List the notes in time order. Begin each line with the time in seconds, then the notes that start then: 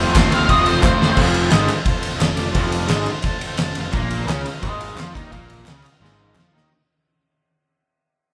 Already playing: F3 C4 F4
0.00 A3
0.11 F3 A3 F4 A4 C5
0.15 F1 C4 F4 C6, kick, snare, clap, ride
0.26 D#2 F4 A4 C5
0.31 C4 F4 F5, ride
0.36 A3
0.44 F4 A4 C5
0.48 F1 F3 A3 C4 D#5, kick, ride
0.52 F4
0.60 F4 A4 C5
0.65 A3 C4 F4 C5, ride
0.70 F3
0.76 F4 A4 C5
0.81 F1 F3 A3, kick, snare, clap
0.85 C4 F4
0.97 F1 F4 A4 C5
1.02 A3 C4, snare
1.14 F1 F2 F4 A4 C5, kick, crash
1.20 F3
1.34 F4 A4, ride
1.39 C5
1.49 G#1 G#2 G#3 F4 A4 C5, snare, clap, ride
1.65 F4 A4 C5, ride
1.70 clap
1.86 F4 A4 C5, kick, ride
1.99 F4 A4 C5, ride
2.15 F4 D#5
2.19 F1 F2 A4, snare, clap, ride
2.35 F1 F2 F4 A4 D5, ride
2.50 F4 A4 C5
2.55 F1 F2 F3, kick, ride
2.68 F4 A4 D5
2.72 ride
2.87 G#1 G#2 G#3 F4 A4 C5, snare, ride
2.91 clap
3.05 F4 A4 C5 C6, ride
3.22 F4 A4 A5, kick, ride
3.27 C5
3.41 F4, ride
3.46 A4 C5 G5
3.57 F1 F2, snare, clap, ride
3.63 F4 A4 C5 A5
3.75 F1 F2 F5, ride
3.79 F4 A4 C5
3.92 A#1 A#2 A#3, kick, ride
3.97 F4 A#4 F5
4.10 F4 A#4 F5, ride
4.26 C#2 C#3 C#4, snare, clap, ride
4.32 F4 A#4 F5
4.45 F4 A#4 F5, ride
4.59 G#1 G#2 G#3 F4 A#4 C5, kick, ride
4.78 F4 A#4 F5, ride
4.93 F2 F3 F4 A#4 F5
4.98 F4, snare, clap, ride
5.11 D#3 D#4 F4 A#4, kick
5.16 D#2 D5, ride
5.27 F4 A#4
5.31 A#1 A#2 A#3 F5, kick, ride
5.45 F4 A#4 F5
5.50 ride
5.65 C#2 C#3 F4 A#4, snare, clap, ride
5.69 C#4 F5
5.83 F4 A#4 F5, clap, ride
5.98 G#1 G#2 F4 A#4 F5
6.02 G#3, snare
6.18 F4 A#4 F5
6.34 F2 F3 F4 A#4 C5, clap
6.38 snare
6.52 D#2 D#3 D#4 F4 A#4 F5
6.57 snare